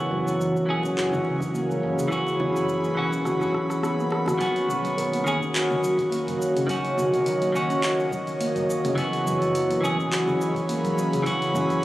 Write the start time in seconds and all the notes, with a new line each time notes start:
Already playing: E3 F#3 B3 C#4 F#4 C#5 D#5
0.10 F#1 F#3 C#4
0.26 F#1, shaker
0.40 E3, shaker
0.55 A#3, shaker
0.66 B1 E3 C#4, djembe tone
0.70 G#4
0.83 C#4, kick, djembe slap, shaker
0.97 F#1 F#4, clap, shaker
1.12 djembe bass, low conga, shaker
1.25 C#2 F#3, djembe slap
1.40 G#4, kick, djembe bass, shaker
1.54 A#3, djembe slap, shaker
1.66 F#3 B5
1.71 shaker
1.83 F#1
1.98 C#3, shaker
2.08 E3 F#3 C#4, kick, shaker
2.12 F#4
2.27 djembe slap, shaker
2.39 F#1 F#3, djembe bass, low conga
2.55 F#1, shaker
2.68 E3, djembe tone, shaker
2.84 A#3, shaker
2.95 B1 E3 C#4 F#4
3.12 C#4, kick, djembe slap, shaker
3.25 F#1 F#4, cross-stick, low conga, shaker
3.41 cross-stick, djembe slap, djembe bass, shaker
3.53 F#3, kick, cross-stick
3.69 cross-stick, djembe tone, shaker
3.83 B3, cross-stick, shaker
3.98 A#3, shaker
4.10 cross-stick, djembe slap
4.26 F#4, cross-stick, djembe slap, djembe bass, low conga, shaker
4.38 D#3 F#3 B3 C#4 F#4, kick, open hi-hat, shaker
4.56 open hi-hat, shaker
4.68 B1 F#3, shaker
4.84 B1, open hi-hat, shaker
4.97 D#3 F#4, open hi-hat, shaker
5.13 A#3, open hi-hat, shaker
5.24 D#2 D#3 C#4 G#4, shaker
5.41 C#4, kick, shaker
5.54 F#4, clap, open hi-hat, shaker
5.65 C#5
5.71 low conga, shaker
5.83 F#3, shaker
5.98 kick, open hi-hat, shaker
6.04 D#5
6.11 A#3, open hi-hat, shaker
6.27 F#1 F#3, open hi-hat, shaker
6.42 shaker
6.56 C#3, open hi-hat, shaker
6.67 D#3 F#3 C#4, kick, open hi-hat, shaker
6.71 F#4
6.85 open hi-hat, shaker
6.97 B1 F#3, low conga, shaker
7.13 B1, open hi-hat, shaker
7.26 D#3, open hi-hat, shaker
7.42 A#3, open hi-hat, shaker
7.52 D#2 D#3 C#4, shaker
7.57 F#4
7.70 C#4, open hi-hat, shaker
7.83 F#4, clap, open hi-hat, shaker
8.00 shaker
8.11 F#3, kick, shaker
8.27 open hi-hat, shaker
8.41 A#3, open hi-hat, shaker
8.55 F#1 F#3, open hi-hat, shaker
8.70 shaker
8.84 C#3, open hi-hat, low conga, shaker
8.95 E3 F#3 B3 C#4 F#4, kick, open hi-hat, shaker
9.13 open hi-hat, shaker
9.25 F#1 F#3, shaker
9.41 F#1 G#4, open hi-hat, shaker
9.54 E3, open hi-hat, shaker
9.70 A#3 C#4, open hi-hat, shaker
9.80 B1 E3 C#4 B5
9.84 G#4, shaker
9.98 C#4, kick, shaker
10.11 F#4, clap, open hi-hat, shaker
10.27 low conga, shaker
10.40 F#3, shaker
10.55 kick, open hi-hat, shaker
10.69 A#3, open hi-hat, shaker
10.84 E1 F#3, open hi-hat, shaker
10.98 shaker
11.13 C#3, open hi-hat, shaker
11.23 E3 F#3 C#4, kick, open hi-hat
11.27 F#4, shaker
11.42 open hi-hat, shaker
11.54 F#1 F#3, low conga, shaker
11.69 F#1, open hi-hat, shaker